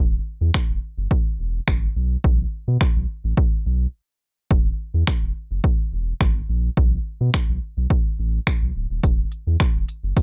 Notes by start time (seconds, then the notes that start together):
Already playing: E1
0.41 E2
0.54 finger snap, kick
0.69 E1
0.98 F#1
1.11 kick
1.39 E1
1.68 G1, finger snap, kick
1.96 B1
2.24 B1, kick
2.68 B2
2.81 finger snap, kick
2.96 B1
3.24 A1
3.37 kick
3.66 B1
4.51 E1, kick
4.94 E2
5.07 finger snap, kick
5.22 E1
5.51 F#1
5.64 kick
5.92 E1
6.21 G#1, finger snap, kick
6.49 A#1
6.77 B1, kick
7.21 B2
7.34 finger snap, kick
7.49 B1
7.77 B1
7.90 kick
8.19 A1
8.47 finger snap, kick
8.62 B1
8.75 D1
8.90 D#1
9.03 E1, kick, closed hi-hat
9.32 closed hi-hat
9.47 E2
9.60 finger snap, kick, closed hi-hat
9.75 E1
9.88 closed hi-hat
10.03 F#1
10.17 kick, closed hi-hat